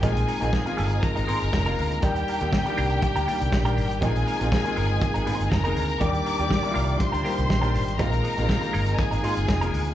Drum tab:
HH |xxox-xoxxxox-xox|xxox-xoxxxox-xox|xxox-xoxxxox-xox|xxox-xoxxxox-xox|
SD |----o-------o---|----o-------o---|----o-------o---|----o-------o---|
BD |o---o---o---o---|o---o---o---o---|o---o---o---o---|o---o---o---o---|

HH |xxox-xoxxxox-xox|
SD |----o-------o---|
BD |o---o---o---o---|